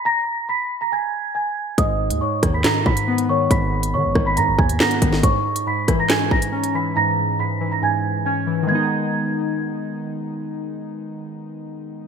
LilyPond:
<<
  \new Staff \with { instrumentName = "Celesta" } { \time 4/4 \key gis \minor \tempo 4 = 139 <ais'' ais'''>4 <b'' b'''>8. <ais'' ais'''>16 <gis'' gis'''>4 <gis'' gis'''>4 | <dis'' dis'''>4 <cis'' cis'''>8. <b'' b'''>16 <ais'' ais'''>8 <b'' b'''>4 <cis'' cis'''>8 | <b'' b'''>4 <cis'' cis'''>8. <b'' b'''>16 <ais'' ais'''>8 <gis'' gis'''>8 <ais'' ais'''>4 | <cis'' cis'''>4 <b'' b'''>8. <ais'' ais'''>16 <gis'' gis'''>8 <ais'' ais'''>4 <b'' b'''>8 |
<ais'' ais'''>4 <b'' b'''>8. <ais'' ais'''>16 <gis'' gis'''>4 <gis'' gis'''>4 | gis'''2. r4 | r1 | }
  \new Staff \with { instrumentName = "Synth keys" } { \clef bass \time 4/4 \key gis \minor r1 | gis,8 gis,8 gis,8 dis8 gis,4 b8 dis8 | gis,8 gis,8 gis,8 dis8 gis,4 b8 dis8 | gis,8 gis,8 gis,8 e8 gis,4 cis'8 e8 |
gis,8 gis,8 gis,8 e8 gis,4 cis'8 e8 | <dis gis b dis'>1~ | <dis gis b dis'>1 | }
  \new Staff \with { instrumentName = "808-style bass" } { \clef bass \time 4/4 \key gis \minor r1 | gis,,8. dis,16 r8 dis,8 r8 gis,4. | gis,,4 dis16 gis,,16 gis,,8 gis,16 gis,,16 dis,8 r8 gis,,8 | r1 |
r1 | r1 | r1 | }
  \new DrumStaff \with { instrumentName = "Drums" } \drummode { \time 4/4 r4 r4 r4 r4 | <hh bd>8. hh16 r8 <hh bd ss>8 <hc hh sn>8 bd16 hh16 r16 hh8. | <hh bd>8. hh16 r8 <bd ss>8 hh8 bd16 hh16 <hc sn>16 hh16 <hh bd>16 sn16 | <hh bd>8. hh16 r8 <hh bd ss>8 <hc hh sn>8 bd16 hh16 r16 hh8. |
r4 r4 r4 r4 | r4 r4 r4 r4 | r4 r4 r4 r4 | }
>>